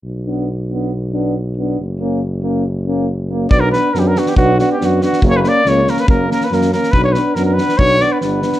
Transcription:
<<
  \new Staff \with { instrumentName = "Trumpet" } { \time 2/4 \key b \minor \tempo 4 = 140 r2 | r2 | r2 | r2 |
d''16 ais'16 b'8 ais'32 g'32 ais'16 fis'16 g'16 | fis'8 fis'16 g'16 fis'8 fis'8 | cis''16 b'32 b'32 d''8 cis''8 ais'16 b'16 | ais'8 ais'16 b'16 ais'8 ais'8 |
b'16 cis''16 b'8 ais'16 ais'16 b'8 | cis''8 d''16 b'16 b'4 | }
  \new Staff \with { instrumentName = "Euphonium" } { \time 2/4 \key b \minor r8 d'8 r8 d'8 | r8 d'8 r8 d'8 | r8 cis'8 r8 cis'8 | r8 cis'8 r8 cis'8 |
d'8 d'8 d'8 d'8 | d'8 d'8 d'8 d'8 | cis'8 cis'8 cis'8 cis'8 | cis'8 cis'8 cis'8 cis'8 |
d'8 d'8 d'8 d'8 | d'8 d'8 d'8 d'8 | }
  \new Staff \with { instrumentName = "Euphonium" } { \time 2/4 \key b \minor r8 b8 r8 b8 | r8 b8 r8 b8 | r8 ais8 r8 ais8 | r8 ais8 r8 ais8 |
b8 b8 b8 b8 | b8 b8 b8 b8 | ais8 ais8 ais8 ais8 | ais8 ais8 ais8 ais8 |
b8 b8 b8 b8 | b8 b8 b8 b8 | }
  \new Staff \with { instrumentName = "Tuba" } { \clef bass \time 2/4 \key b \minor b,,2~ | b,,2 | fis,,2~ | fis,,2 |
b,,4 fis,4 | b,,4 fis,4 | fis,,4 cis,4 | fis,,4 fis,4 |
b,,4 fis,4 | b,,4 g,,4 | }
  \new DrumStaff \with { instrumentName = "Drums" } \drummode { \time 2/4 r4 r4 | r4 r4 | r4 r4 | r4 r4 |
bd8 sn8 sn8 sn16 sn16 | bd8 sn8 sn8 sn16 sn16 | bd8 sn8 sn8 sn16 sn16 | bd8 sn16 sn16 sn16 sn16 sn16 sn16 |
bd8 sn8 sn8 sn16 sn16 | bd8 sn8 sn8 sn16 sn16 | }
>>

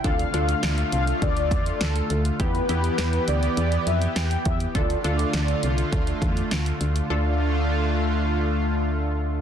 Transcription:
<<
  \new Staff \with { instrumentName = "Analog polysynth" } { \time 4/4 \key d \dorian \tempo 4 = 102 f''4. f''8 d''4 a'8. r16 | b'4. d''4 e''8 g''8 e''8 | d''2. r4 | r1 | }
  \new Staff \with { instrumentName = "Analog polysynth" } { \time 4/4 \key d \dorian <d' f' a'>8 <d' f' a'>4. r2 | <b e' g'>8 <b e' g'>4. r2 | <d' f' a'>8 <d' f' a'>4. r2 | <d' f' a'>1 | }
  \new Staff \with { instrumentName = "Analog synth pad" } { \time 4/4 \key d \dorian <d a f'>1 | <e b g'>1 | <d a f'>1 | <d a f'>1 | }
  \new Staff \with { instrumentName = "FM bass" } { \clef bass \time 4/4 \key d \dorian d,8 d,8 d,8 c,8 d,8 e,8 d,8 d,8 | e,8 e,8 e,8 d,8 e,8 f,8 e,8 e,8 | d,8 d,8 d,8 c,8 d,8 e,8 d,8 d,8 | d,1 | }
  \new DrumStaff \with { instrumentName = "Drums" } \drummode { \time 4/4 <hh bd>16 hh16 hh16 hh16 <hh sn>16 hh16 hh16 hh16 <hh bd>16 hh16 <hh bd>16 hh16 <hh sn>16 hh16 hh16 hh16 | <hh bd>16 hh16 hh16 hh16 <hh sn>16 hh16 hh16 hh16 hh16 hh16 hh16 hh16 <hh sn>16 hh16 <hh bd>16 hh16 | <hh bd>16 hh16 hh16 hh16 <hh sn>16 hh16 hh16 hh16 <hh bd>16 hh16 <hh bd>16 hh16 <hh sn>16 hh16 hh16 hh16 | r4 r4 r4 r4 | }
>>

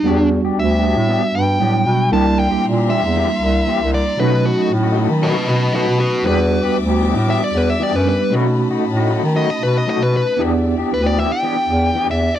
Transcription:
<<
  \new Staff \with { instrumentName = "String section" } { \time 4/4 \key e \dorian \tempo 4 = 116 r1 | <e'' bes'' c'''>1 | <dis'' a'' b''>1 | <d'' e'' d'''>1 |
<dis'' a'' b''>1 | <d'' e''>1 | }
  \new Staff \with { instrumentName = "Lead electric guitar" } { \time 4/4 \key e \dorian d'8 r8 e''4. g''4. | a''8 g''8 r8 e''2 d''8 | b'8 fis'8 r4 <b' dis''>8 <b' dis''>8 <fis' b'>8 <fis' b'>8 | b'4 r4 e''16 d''16 b'16 e''16 d''16 b'16 b'8 |
r2 dis''16 dis''16 b'16 dis''16 dis''16 b'16 b'8 | r4 b'16 d''16 e''16 g''4. e''8 d''16 | }
  \new Staff \with { instrumentName = "Clean electric guitar" } { \time 4/4 \key e \dorian <b d' g'>16 r8 <d' g'>16 r16 <d' g'>16 <b d' g'>16 r16 <b d' g'>16 r8. <b d' g'>16 r8. | <e bes c' g'>16 r8 <bes c' g'>16 r16 <bes c' g'>16 <e bes c' g'>16 r16 <e bes c' g'>16 r8. <e bes c' g'>16 r8. | <fis a dis' fis'>16 r8 <a dis' fis'>16 r16 <a dis' fis'>16 <fis a dis' fis'>16 r16 <fis a dis' fis'>16 r8. <fis a dis' fis'>16 r8. | <e b d' g'>16 r8 <b d' g'>16 r16 <b d' g'>16 <e b d' g'>16 r16 <e b d' g'>16 r8. <e b d' g'>16 r8. |
<fis a dis' fis'>16 r8 <a dis' fis'>16 r16 <a dis' fis'>16 <fis a dis' fis'>16 r16 <fis a dis' fis'>16 r8. <fis a dis' fis'>16 r8. | <e b d' g'>16 r8 <b d' g'>16 r16 <b d' g'>16 <e b d' g'>16 r16 <e b d' g'>16 r8. <e b d' g'>16 r8. | }
  \new Staff \with { instrumentName = "Tine electric piano" } { \time 4/4 \key e \dorian <g b d' fis'>2. <fis g b d'>4 | <g bes d' e'>1 | <fis a cis' dis'>1 | <g b d' fis'>2.~ <g b d' fis'>8 <g b d' g'>8 |
<a cis' dis' fis'>1 | <b d' e' g'>1 | }
  \new Staff \with { instrumentName = "Bass clarinet" } { \clef bass \time 4/4 \key e \dorian e,8. e,16 d,8. a,8 r16 g,8 a,8 b,8 | c,8. c,16 bes,8. e,8 r16 c,8 r16 c,8 r16 | b,8. r16 a,8. dis8 r16 b,8 r16 b,8 r16 | e,8. e,16 d,8. a,8 r16 e,8 r16 fis,8 r16 |
b,8. b,16 a,8. dis8 r16 b,8 r16 b,8 r16 | e,8. e,16 d,8. r8. e,8 r16 e,8 r16 | }
>>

